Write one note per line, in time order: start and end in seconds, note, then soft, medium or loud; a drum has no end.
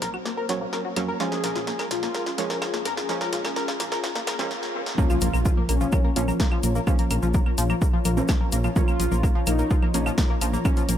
0.00 0.18 A#1 loud
0.00 0.46 F#3 medium
0.00 0.46 A#3 medium
0.00 1.16 A#3 medium
0.00 0.46 C#4 medium
0.00 1.16 F#4 medium
0.00 0.10 A#4 loud
0.00 1.18 C5 medium
0.00 snare medium
0.00 open hi-hat medium
0.14 0.17 F#4 medium
0.14 claves medium
0.25 0.31 A#3 medium
0.25 snare medium
0.37 0.45 A#4 loud
0.49 0.65 A#1 loud
0.49 0.94 F#3 medium
0.49 0.94 A#3 medium
0.49 0.94 C#4 medium
0.49 0.52 F#4 medium
0.49 snare medium
0.49 open hi-hat loud
0.61 0.66 A#3 medium
0.73 0.81 A#4 loud
0.73 snare medium
0.85 0.88 F#4 medium
0.85 low conga medium
0.96 1.12 F2 loud
0.96 1.17 F#3 medium
0.96 1.17 A#3 medium
0.96 1.02 A#3 medium
0.96 1.17 C#4 loud
0.96 snare medium
0.96 open hi-hat medium
0.96 low conga medium
0.96 claves medium
1.08 1.16 A#4 loud
1.20 2.35 F3 loud
1.20 2.35 G#3 medium
1.20 4.94 C#4 medium
1.20 2.35 C#4 loud
1.20 4.94 F4 medium
1.20 1.23 F4 medium
1.20 4.94 G#4 medium
1.20 1.82 G#4 loud
1.20 snare medium
1.32 1.37 A#3 medium
1.32 snare medium
1.44 1.52 A#1 loud
1.44 1.52 A#4 loud
1.44 snare loud
1.44 open hi-hat loud
1.44 low conga medium
1.56 1.72 A#1 medium
1.56 1.59 F4 medium
1.56 snare medium
1.67 1.73 A#3 medium
1.67 snare loud
1.79 1.87 A#4 loud
1.79 snare medium
1.79 claves medium
1.91 2.07 A#1 loud
1.91 1.94 F4 medium
1.91 2.53 F4 loud
1.91 snare loud
1.91 open hi-hat medium
2.03 2.08 A#3 medium
2.03 snare medium
2.15 2.23 A#4 loud
2.15 snare loud
2.26 2.30 F4 medium
2.26 snare medium
2.38 2.54 A#1 loud
2.38 3.06 F3 medium
2.38 3.06 G#3 medium
2.38 2.44 A#3 medium
2.38 3.06 C#4 medium
2.38 snare loud
2.38 open hi-hat loud
2.50 2.58 A#4 loud
2.50 snare medium
2.62 2.65 F4 medium
2.62 snare loud
2.62 claves medium
2.74 2.79 A#3 medium
2.74 snare medium
2.85 3.01 F2 loud
2.85 2.93 A#4 loud
2.85 snare loud
2.85 open hi-hat medium
2.85 low conga loud
2.97 3.01 F4 medium
2.97 snare medium
3.09 4.24 F3 medium
3.09 4.24 G#3 medium
3.09 3.14 A#3 medium
3.09 4.24 C#4 medium
3.09 snare loud
3.21 3.29 A#4 loud
3.21 snare medium
3.33 3.41 A#1 loud
3.33 3.36 F4 medium
3.33 snare loud
3.33 open hi-hat loud
3.33 low conga medium
3.45 3.61 A#1 medium
3.45 3.50 A#3 medium
3.45 snare medium
3.45 claves medium
3.56 3.64 A#4 loud
3.56 snare loud
3.68 3.71 F4 medium
3.68 snare medium
3.80 3.96 A#1 loud
3.80 3.85 A#3 medium
3.80 snare loud
3.80 open hi-hat medium
3.92 4.00 A#4 loud
3.92 snare medium
4.04 4.07 F4 medium
4.04 snare loud
4.04 swell medium
4.15 4.21 A#3 medium
4.15 snare medium
4.27 4.43 A#1 medium
4.27 4.35 A#4 loud
4.27 snare loud
4.27 open hi-hat loud
4.27 claves medium
4.39 4.51 F3 medium
4.39 4.51 G#3 medium
4.39 4.51 C#4 loud
4.39 4.42 F4 medium
4.39 snare loud
4.51 snare medium
4.63 snare medium
4.86 snare medium
4.98 6.13 F3 loud
4.98 6.13 A#3 medium
4.98 5.03 A#3 medium
4.98 6.13 C#4 loud
4.98 5.60 F4 loud
4.98 10.98 F4 medium
4.98 5.03 A#4 medium
4.98 10.98 C#5 medium
4.98 10.98 A#5 medium
4.98 kick loud
4.98 impact medium
4.98 shaker soft
5.10 5.15 F3 loud
5.10 5.15 F4 medium
5.10 claves medium
5.10 shaker soft
5.21 5.30 A#1 loud
5.21 5.27 A#3 medium
5.21 5.27 A#4 medium
5.21 open hi-hat loud
5.21 low conga medium
5.21 shaker medium
5.34 5.50 A#1 medium
5.34 5.39 A#3 medium
5.34 5.39 A#4 medium
5.34 claves medium
5.34 shaker soft
5.45 5.51 F3 loud
5.45 5.51 F4 medium
5.45 kick loud
5.45 shaker medium
5.57 5.62 A#3 medium
5.57 5.63 A#4 medium
5.57 low conga loud
5.69 5.85 A#1 loud
5.69 5.74 A#3 medium
5.69 6.30 C#4 loud
5.69 5.74 A#4 medium
5.69 open hi-hat loud
5.69 claves soft
5.69 shaker medium
5.81 5.86 F3 loud
5.81 5.86 F4 medium
5.81 shaker soft
5.92 5.98 A#3 medium
5.92 5.98 A#4 medium
5.92 kick loud
5.92 low conga medium
5.92 claves medium
5.92 shaker medium
6.04 6.10 A#3 medium
6.04 6.10 A#4 medium
6.16 6.32 A#1 medium
6.16 6.84 F3 medium
6.16 6.21 F3 loud
6.16 6.84 A#3 medium
6.16 6.84 C#4 medium
6.16 6.21 F4 medium
6.16 open hi-hat loud
6.16 shaker medium
6.28 6.33 A#3 medium
6.28 6.33 A#4 medium
6.28 low conga medium
6.28 claves medium
6.28 shaker soft
6.40 6.45 A#3 medium
6.40 6.45 A#4 medium
6.40 kick loud
6.40 snare loud
6.40 shaker soft
6.52 6.57 F3 loud
6.52 6.57 F4 medium
6.52 claves medium
6.63 6.79 A#1 loud
6.63 6.69 A#3 medium
6.63 6.69 A#4 medium
6.63 open hi-hat loud
6.63 low conga medium
6.63 shaker medium
6.75 6.81 A#3 medium
6.75 6.81 A#4 medium
6.75 shaker soft
6.87 6.92 F3 loud
6.87 8.02 F3 medium
6.87 8.02 A#3 medium
6.87 8.02 C#4 medium
6.87 6.92 F4 medium
6.87 kick loud
6.87 claves medium
6.87 shaker medium
6.98 7.04 A#3 medium
6.98 7.04 A#4 medium
6.98 open hi-hat medium
6.98 low conga medium
6.98 shaker soft
7.11 7.19 A#1 loud
7.11 7.16 A#3 medium
7.11 7.16 A#4 medium
7.11 open hi-hat loud
7.11 claves medium
7.11 shaker medium
7.23 7.39 A#1 medium
7.23 7.28 F3 loud
7.23 7.28 F4 medium
7.23 shaker soft
7.34 7.40 A#3 medium
7.34 7.40 A#4 medium
7.34 kick loud
7.34 low conga medium
7.34 shaker medium
7.46 7.51 A#3 medium
7.46 7.51 A#4 medium
7.46 claves medium
7.58 7.74 A#1 loud
7.58 7.63 F3 loud
7.58 7.63 F4 medium
7.58 open hi-hat loud
7.58 shaker loud
7.70 7.75 A#3 medium
7.70 7.75 A#4 medium
7.70 low conga medium
7.70 claves medium
7.70 shaker soft
7.82 7.87 A#3 medium
7.82 7.87 A#4 medium
7.82 kick loud
7.82 shaker medium
7.93 7.99 F3 loud
7.93 7.99 F4 medium
8.05 8.21 A#1 medium
8.05 8.10 A#3 medium
8.05 8.10 A#4 medium
8.05 open hi-hat loud
8.05 low conga medium
8.05 claves medium
8.05 shaker medium
8.17 8.73 F3 medium
8.17 8.73 A#3 medium
8.17 8.22 A#3 medium
8.17 8.73 C#4 loud
8.17 8.22 A#4 medium
8.17 shaker soft
8.28 8.34 F3 loud
8.28 8.34 F4 medium
8.28 kick loud
8.28 snare loud
8.28 claves medium
8.28 shaker medium
8.41 8.46 A#3 medium
8.41 8.46 A#4 medium
8.41 low conga medium
8.52 8.68 A#1 medium
8.52 8.58 A#3 medium
8.52 8.58 A#4 medium
8.52 open hi-hat loud
8.52 shaker medium
8.64 8.70 F3 loud
8.64 8.70 F4 medium
8.64 claves medium
8.64 shaker soft
8.76 9.91 F3 loud
8.76 9.91 A#3 medium
8.76 8.81 A#3 medium
8.76 9.91 C#4 loud
8.76 9.38 F4 loud
8.76 8.81 A#4 medium
8.76 kick loud
8.76 low conga medium
8.76 shaker medium
8.88 8.93 A#3 medium
8.88 8.93 A#4 medium
8.88 claves medium
8.88 shaker soft
9.00 9.08 A#1 loud
9.00 9.05 F3 loud
9.00 9.05 F4 medium
9.00 open hi-hat loud
9.00 shaker loud
9.12 9.28 A#1 medium
9.12 9.17 A#3 medium
9.12 9.17 A#4 medium
9.12 low conga medium
9.12 shaker soft
9.23 9.29 A#3 medium
9.23 9.29 A#4 medium
9.23 kick loud
9.23 claves medium
9.23 shaker medium
9.35 9.40 F3 loud
9.35 9.40 F4 medium
9.47 9.63 A#1 loud
9.47 9.52 A#3 medium
9.47 10.08 D#4 loud
9.47 9.52 A#4 medium
9.47 open hi-hat loud
9.47 low conga medium
9.47 claves medium
9.47 shaker medium
9.59 9.64 A#3 medium
9.59 9.64 A#4 medium
9.59 shaker soft
9.70 9.76 F3 loud
9.70 9.76 F4 medium
9.70 kick loud
9.70 shaker soft
9.82 9.88 A#3 medium
9.82 9.88 A#4 medium
9.82 low conga medium
9.82 claves medium
9.94 10.10 A#1 medium
9.94 10.62 F3 medium
9.94 10.62 A#3 medium
9.94 10.00 A#3 medium
9.94 10.62 C#4 medium
9.94 10.00 A#4 medium
9.94 open hi-hat loud
9.94 shaker medium
10.06 10.11 F3 loud
10.06 10.11 F4 medium
10.06 claves medium
10.06 shaker soft
10.18 10.23 A#3 medium
10.18 10.23 A#4 medium
10.18 kick loud
10.18 snare loud
10.18 low conga medium
10.18 shaker soft
10.30 10.35 A#3 medium
10.30 10.35 A#4 medium
10.41 10.57 A#1 loud
10.41 10.47 F3 loud
10.41 10.47 F4 medium
10.41 open hi-hat loud
10.41 claves soft
10.41 shaker medium
10.53 10.59 A#3 medium
10.53 10.59 A#4 medium
10.53 low conga medium
10.53 shaker soft
10.65 10.98 F3 medium
10.65 10.98 A#3 medium
10.65 10.70 A#3 medium
10.65 10.98 C#4 medium
10.65 10.70 A#4 medium
10.65 kick loud
10.65 claves medium
10.65 shaker medium
10.77 10.82 F3 loud
10.77 10.82 F4 medium
10.77 open hi-hat medium
10.77 shaker soft
10.89 10.97 A#1 loud
10.89 10.94 A#3 medium
10.89 10.94 A#4 medium
10.89 open hi-hat loud
10.89 low conga medium
10.89 shaker medium